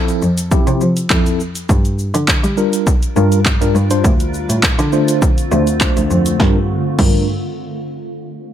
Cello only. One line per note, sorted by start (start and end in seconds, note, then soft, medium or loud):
0.22 0.60 F2 medium
0.67 0.80 C3 medium
0.81 1.06 F3 medium
1.10 1.59 F2 medium
1.69 2.07 G2 loud
2.14 2.39 D3 medium
2.44 3.16 G3 loud
3.16 3.54 G2 loud
3.61 3.73 G2 medium
3.75 4.00 G2 loud
4.04 4.42 D2 loud
4.50 4.74 A2 medium
4.79 5.51 D3 loud
5.52 5.89 D2 loud
5.97 6.08 D2 medium
6.11 6.35 F2 loud
6.40 6.57 G2 loud
6.99 7.26 G2 loud